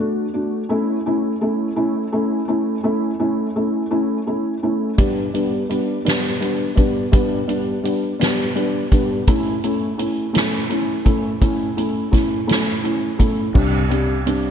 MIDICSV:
0, 0, Header, 1, 4, 480
1, 0, Start_track
1, 0, Tempo, 714286
1, 468, Time_signature, 6, 3, 24, 8
1, 9749, End_track
2, 0, Start_track
2, 0, Title_t, "Felt piano"
2, 0, Program_c, 0, 0
2, 0, Note_on_c, 0, 57, 53
2, 0, Note_on_c, 0, 62, 50
2, 0, Note_on_c, 0, 66, 62
2, 162, Note_off_c, 0, 57, 0
2, 162, Note_off_c, 0, 62, 0
2, 163, Note_off_c, 0, 66, 0
2, 225, Note_on_c, 0, 57, 54
2, 227, Note_on_c, 0, 62, 50
2, 227, Note_on_c, 0, 66, 61
2, 401, Note_off_c, 0, 57, 0
2, 402, Note_off_c, 0, 62, 0
2, 402, Note_off_c, 0, 66, 0
2, 464, Note_on_c, 0, 57, 64
2, 464, Note_on_c, 0, 61, 59
2, 467, Note_on_c, 0, 64, 70
2, 641, Note_off_c, 0, 57, 0
2, 641, Note_off_c, 0, 61, 0
2, 643, Note_off_c, 0, 64, 0
2, 711, Note_on_c, 0, 57, 57
2, 713, Note_on_c, 0, 61, 54
2, 717, Note_on_c, 0, 64, 61
2, 885, Note_off_c, 0, 57, 0
2, 886, Note_off_c, 0, 61, 0
2, 888, Note_off_c, 0, 64, 0
2, 947, Note_on_c, 0, 57, 55
2, 948, Note_on_c, 0, 61, 51
2, 952, Note_on_c, 0, 64, 60
2, 1123, Note_off_c, 0, 57, 0
2, 1124, Note_off_c, 0, 61, 0
2, 1125, Note_off_c, 0, 64, 0
2, 1181, Note_on_c, 0, 57, 62
2, 1184, Note_on_c, 0, 64, 67
2, 1186, Note_on_c, 0, 61, 55
2, 1360, Note_off_c, 0, 57, 0
2, 1362, Note_off_c, 0, 61, 0
2, 1362, Note_off_c, 0, 64, 0
2, 1425, Note_on_c, 0, 57, 56
2, 1428, Note_on_c, 0, 64, 62
2, 1429, Note_on_c, 0, 61, 51
2, 1602, Note_off_c, 0, 57, 0
2, 1604, Note_off_c, 0, 61, 0
2, 1604, Note_off_c, 0, 64, 0
2, 1665, Note_on_c, 0, 57, 60
2, 1669, Note_on_c, 0, 61, 51
2, 1669, Note_on_c, 0, 64, 63
2, 1842, Note_off_c, 0, 57, 0
2, 1844, Note_off_c, 0, 61, 0
2, 1845, Note_off_c, 0, 64, 0
2, 1903, Note_on_c, 0, 57, 61
2, 1905, Note_on_c, 0, 61, 59
2, 1908, Note_on_c, 0, 64, 69
2, 2082, Note_off_c, 0, 57, 0
2, 2082, Note_off_c, 0, 61, 0
2, 2084, Note_off_c, 0, 64, 0
2, 2146, Note_on_c, 0, 57, 59
2, 2147, Note_on_c, 0, 61, 54
2, 2148, Note_on_c, 0, 64, 66
2, 2323, Note_off_c, 0, 57, 0
2, 2324, Note_off_c, 0, 61, 0
2, 2324, Note_off_c, 0, 64, 0
2, 2388, Note_on_c, 0, 57, 57
2, 2391, Note_on_c, 0, 64, 56
2, 2393, Note_on_c, 0, 61, 47
2, 2564, Note_off_c, 0, 57, 0
2, 2566, Note_off_c, 0, 64, 0
2, 2567, Note_off_c, 0, 61, 0
2, 2623, Note_on_c, 0, 57, 60
2, 2627, Note_on_c, 0, 61, 57
2, 2627, Note_on_c, 0, 64, 67
2, 2802, Note_off_c, 0, 57, 0
2, 2804, Note_off_c, 0, 61, 0
2, 2804, Note_off_c, 0, 64, 0
2, 2866, Note_on_c, 0, 61, 49
2, 2867, Note_on_c, 0, 57, 53
2, 2871, Note_on_c, 0, 64, 61
2, 3043, Note_off_c, 0, 61, 0
2, 3044, Note_off_c, 0, 57, 0
2, 3046, Note_off_c, 0, 64, 0
2, 3109, Note_on_c, 0, 61, 51
2, 3110, Note_on_c, 0, 57, 57
2, 3114, Note_on_c, 0, 64, 59
2, 3285, Note_off_c, 0, 57, 0
2, 3285, Note_off_c, 0, 61, 0
2, 3287, Note_off_c, 0, 64, 0
2, 3345, Note_on_c, 0, 55, 66
2, 3345, Note_on_c, 0, 59, 58
2, 3350, Note_on_c, 0, 62, 71
2, 3523, Note_off_c, 0, 55, 0
2, 3523, Note_off_c, 0, 59, 0
2, 3526, Note_off_c, 0, 62, 0
2, 3586, Note_on_c, 0, 55, 54
2, 3587, Note_on_c, 0, 59, 52
2, 3592, Note_on_c, 0, 62, 60
2, 3764, Note_off_c, 0, 55, 0
2, 3764, Note_off_c, 0, 59, 0
2, 3767, Note_off_c, 0, 62, 0
2, 3826, Note_on_c, 0, 55, 54
2, 3827, Note_on_c, 0, 59, 47
2, 3828, Note_on_c, 0, 62, 57
2, 4004, Note_off_c, 0, 55, 0
2, 4004, Note_off_c, 0, 59, 0
2, 4005, Note_off_c, 0, 62, 0
2, 4064, Note_on_c, 0, 55, 61
2, 4064, Note_on_c, 0, 59, 56
2, 4064, Note_on_c, 0, 62, 67
2, 4243, Note_off_c, 0, 55, 0
2, 4243, Note_off_c, 0, 59, 0
2, 4243, Note_off_c, 0, 62, 0
2, 4302, Note_on_c, 0, 55, 54
2, 4305, Note_on_c, 0, 59, 51
2, 4307, Note_on_c, 0, 62, 60
2, 4482, Note_off_c, 0, 55, 0
2, 4483, Note_off_c, 0, 59, 0
2, 4485, Note_off_c, 0, 62, 0
2, 4539, Note_on_c, 0, 55, 53
2, 4542, Note_on_c, 0, 59, 52
2, 4544, Note_on_c, 0, 62, 65
2, 4720, Note_off_c, 0, 55, 0
2, 4722, Note_off_c, 0, 59, 0
2, 4723, Note_off_c, 0, 62, 0
2, 4783, Note_on_c, 0, 55, 65
2, 4785, Note_on_c, 0, 62, 74
2, 4787, Note_on_c, 0, 59, 64
2, 4962, Note_off_c, 0, 55, 0
2, 4963, Note_off_c, 0, 62, 0
2, 4965, Note_off_c, 0, 59, 0
2, 5024, Note_on_c, 0, 55, 55
2, 5025, Note_on_c, 0, 59, 51
2, 5026, Note_on_c, 0, 62, 67
2, 5203, Note_off_c, 0, 55, 0
2, 5203, Note_off_c, 0, 59, 0
2, 5204, Note_off_c, 0, 62, 0
2, 5264, Note_on_c, 0, 55, 58
2, 5264, Note_on_c, 0, 59, 51
2, 5265, Note_on_c, 0, 62, 61
2, 5443, Note_off_c, 0, 55, 0
2, 5443, Note_off_c, 0, 59, 0
2, 5443, Note_off_c, 0, 62, 0
2, 5504, Note_on_c, 0, 59, 56
2, 5506, Note_on_c, 0, 55, 63
2, 5506, Note_on_c, 0, 62, 72
2, 5683, Note_off_c, 0, 59, 0
2, 5684, Note_off_c, 0, 55, 0
2, 5684, Note_off_c, 0, 62, 0
2, 5747, Note_on_c, 0, 55, 60
2, 5749, Note_on_c, 0, 59, 53
2, 5753, Note_on_c, 0, 62, 62
2, 5924, Note_off_c, 0, 55, 0
2, 5925, Note_off_c, 0, 59, 0
2, 5927, Note_off_c, 0, 62, 0
2, 5991, Note_on_c, 0, 55, 60
2, 5994, Note_on_c, 0, 59, 53
2, 5995, Note_on_c, 0, 62, 69
2, 6166, Note_off_c, 0, 55, 0
2, 6168, Note_off_c, 0, 59, 0
2, 6168, Note_off_c, 0, 62, 0
2, 6230, Note_on_c, 0, 57, 68
2, 6233, Note_on_c, 0, 61, 59
2, 6234, Note_on_c, 0, 64, 74
2, 6406, Note_off_c, 0, 57, 0
2, 6407, Note_off_c, 0, 61, 0
2, 6408, Note_off_c, 0, 64, 0
2, 6474, Note_on_c, 0, 57, 58
2, 6477, Note_on_c, 0, 64, 62
2, 6479, Note_on_c, 0, 61, 55
2, 6647, Note_off_c, 0, 57, 0
2, 6649, Note_off_c, 0, 64, 0
2, 6650, Note_off_c, 0, 61, 0
2, 6705, Note_on_c, 0, 57, 53
2, 6706, Note_on_c, 0, 61, 51
2, 6711, Note_on_c, 0, 64, 60
2, 6883, Note_off_c, 0, 57, 0
2, 6883, Note_off_c, 0, 61, 0
2, 6886, Note_off_c, 0, 64, 0
2, 6940, Note_on_c, 0, 57, 65
2, 6945, Note_on_c, 0, 61, 59
2, 6948, Note_on_c, 0, 64, 69
2, 7120, Note_off_c, 0, 57, 0
2, 7123, Note_off_c, 0, 61, 0
2, 7124, Note_off_c, 0, 64, 0
2, 7184, Note_on_c, 0, 57, 56
2, 7184, Note_on_c, 0, 61, 51
2, 7187, Note_on_c, 0, 64, 59
2, 7362, Note_off_c, 0, 57, 0
2, 7362, Note_off_c, 0, 61, 0
2, 7363, Note_off_c, 0, 64, 0
2, 7423, Note_on_c, 0, 57, 61
2, 7424, Note_on_c, 0, 61, 55
2, 7428, Note_on_c, 0, 64, 68
2, 7601, Note_off_c, 0, 57, 0
2, 7602, Note_off_c, 0, 61, 0
2, 7604, Note_off_c, 0, 64, 0
2, 7666, Note_on_c, 0, 57, 69
2, 7669, Note_on_c, 0, 61, 64
2, 7672, Note_on_c, 0, 64, 74
2, 7842, Note_off_c, 0, 57, 0
2, 7844, Note_off_c, 0, 61, 0
2, 7846, Note_off_c, 0, 64, 0
2, 7905, Note_on_c, 0, 57, 55
2, 7909, Note_on_c, 0, 61, 54
2, 7910, Note_on_c, 0, 64, 63
2, 8082, Note_off_c, 0, 57, 0
2, 8084, Note_off_c, 0, 61, 0
2, 8084, Note_off_c, 0, 64, 0
2, 8138, Note_on_c, 0, 57, 51
2, 8140, Note_on_c, 0, 61, 50
2, 8143, Note_on_c, 0, 64, 62
2, 8318, Note_off_c, 0, 57, 0
2, 8319, Note_off_c, 0, 61, 0
2, 8321, Note_off_c, 0, 64, 0
2, 8379, Note_on_c, 0, 57, 65
2, 8382, Note_on_c, 0, 61, 57
2, 8384, Note_on_c, 0, 64, 70
2, 8558, Note_off_c, 0, 57, 0
2, 8560, Note_off_c, 0, 61, 0
2, 8561, Note_off_c, 0, 64, 0
2, 8621, Note_on_c, 0, 57, 57
2, 8623, Note_on_c, 0, 61, 50
2, 8627, Note_on_c, 0, 64, 59
2, 8799, Note_off_c, 0, 57, 0
2, 8800, Note_off_c, 0, 61, 0
2, 8802, Note_off_c, 0, 64, 0
2, 8860, Note_on_c, 0, 57, 54
2, 8862, Note_on_c, 0, 64, 64
2, 8863, Note_on_c, 0, 61, 52
2, 9038, Note_off_c, 0, 57, 0
2, 9039, Note_off_c, 0, 64, 0
2, 9040, Note_off_c, 0, 61, 0
2, 9100, Note_on_c, 0, 55, 71
2, 9103, Note_on_c, 0, 60, 62
2, 9103, Note_on_c, 0, 62, 74
2, 9278, Note_off_c, 0, 55, 0
2, 9279, Note_off_c, 0, 60, 0
2, 9280, Note_off_c, 0, 62, 0
2, 9335, Note_on_c, 0, 55, 60
2, 9339, Note_on_c, 0, 60, 53
2, 9339, Note_on_c, 0, 62, 69
2, 9515, Note_off_c, 0, 55, 0
2, 9517, Note_off_c, 0, 60, 0
2, 9517, Note_off_c, 0, 62, 0
2, 9583, Note_on_c, 0, 55, 58
2, 9584, Note_on_c, 0, 60, 54
2, 9585, Note_on_c, 0, 62, 61
2, 9749, Note_off_c, 0, 55, 0
2, 9749, Note_off_c, 0, 60, 0
2, 9749, Note_off_c, 0, 62, 0
2, 9749, End_track
3, 0, Start_track
3, 0, Title_t, "Fingered electric bass"
3, 0, Program_c, 1, 33
3, 9107, Note_on_c, 1, 36, 93
3, 9749, Note_off_c, 1, 36, 0
3, 9749, End_track
4, 0, Start_track
4, 0, Title_t, "Drums"
4, 3347, Note_on_c, 9, 42, 71
4, 3349, Note_on_c, 9, 36, 83
4, 3414, Note_off_c, 9, 42, 0
4, 3416, Note_off_c, 9, 36, 0
4, 3592, Note_on_c, 9, 42, 45
4, 3659, Note_off_c, 9, 42, 0
4, 3834, Note_on_c, 9, 42, 45
4, 3901, Note_off_c, 9, 42, 0
4, 4074, Note_on_c, 9, 42, 69
4, 4085, Note_on_c, 9, 38, 82
4, 4141, Note_off_c, 9, 42, 0
4, 4152, Note_off_c, 9, 38, 0
4, 4315, Note_on_c, 9, 42, 39
4, 4382, Note_off_c, 9, 42, 0
4, 4551, Note_on_c, 9, 42, 41
4, 4553, Note_on_c, 9, 36, 72
4, 4618, Note_off_c, 9, 42, 0
4, 4620, Note_off_c, 9, 36, 0
4, 4790, Note_on_c, 9, 42, 72
4, 4792, Note_on_c, 9, 36, 89
4, 4858, Note_off_c, 9, 42, 0
4, 4859, Note_off_c, 9, 36, 0
4, 5032, Note_on_c, 9, 42, 44
4, 5099, Note_off_c, 9, 42, 0
4, 5276, Note_on_c, 9, 42, 44
4, 5344, Note_off_c, 9, 42, 0
4, 5516, Note_on_c, 9, 42, 72
4, 5528, Note_on_c, 9, 38, 87
4, 5584, Note_off_c, 9, 42, 0
4, 5595, Note_off_c, 9, 38, 0
4, 5756, Note_on_c, 9, 42, 39
4, 5823, Note_off_c, 9, 42, 0
4, 5993, Note_on_c, 9, 36, 76
4, 5993, Note_on_c, 9, 42, 42
4, 6060, Note_off_c, 9, 36, 0
4, 6060, Note_off_c, 9, 42, 0
4, 6234, Note_on_c, 9, 36, 92
4, 6234, Note_on_c, 9, 42, 73
4, 6301, Note_off_c, 9, 36, 0
4, 6301, Note_off_c, 9, 42, 0
4, 6475, Note_on_c, 9, 42, 46
4, 6543, Note_off_c, 9, 42, 0
4, 6714, Note_on_c, 9, 42, 45
4, 6781, Note_off_c, 9, 42, 0
4, 6953, Note_on_c, 9, 42, 71
4, 6965, Note_on_c, 9, 38, 79
4, 7020, Note_off_c, 9, 42, 0
4, 7032, Note_off_c, 9, 38, 0
4, 7193, Note_on_c, 9, 42, 39
4, 7260, Note_off_c, 9, 42, 0
4, 7432, Note_on_c, 9, 36, 76
4, 7432, Note_on_c, 9, 42, 44
4, 7499, Note_off_c, 9, 36, 0
4, 7500, Note_off_c, 9, 42, 0
4, 7672, Note_on_c, 9, 36, 89
4, 7674, Note_on_c, 9, 42, 67
4, 7739, Note_off_c, 9, 36, 0
4, 7741, Note_off_c, 9, 42, 0
4, 7915, Note_on_c, 9, 42, 46
4, 7982, Note_off_c, 9, 42, 0
4, 8151, Note_on_c, 9, 36, 73
4, 8158, Note_on_c, 9, 42, 45
4, 8169, Note_on_c, 9, 38, 26
4, 8218, Note_off_c, 9, 36, 0
4, 8226, Note_off_c, 9, 42, 0
4, 8237, Note_off_c, 9, 38, 0
4, 8394, Note_on_c, 9, 42, 70
4, 8406, Note_on_c, 9, 38, 82
4, 8461, Note_off_c, 9, 42, 0
4, 8473, Note_off_c, 9, 38, 0
4, 8635, Note_on_c, 9, 42, 38
4, 8703, Note_off_c, 9, 42, 0
4, 8869, Note_on_c, 9, 36, 72
4, 8869, Note_on_c, 9, 42, 44
4, 8936, Note_off_c, 9, 36, 0
4, 8937, Note_off_c, 9, 42, 0
4, 9107, Note_on_c, 9, 36, 95
4, 9109, Note_on_c, 9, 49, 77
4, 9175, Note_off_c, 9, 36, 0
4, 9176, Note_off_c, 9, 49, 0
4, 9349, Note_on_c, 9, 42, 51
4, 9416, Note_off_c, 9, 42, 0
4, 9588, Note_on_c, 9, 42, 47
4, 9655, Note_off_c, 9, 42, 0
4, 9749, End_track
0, 0, End_of_file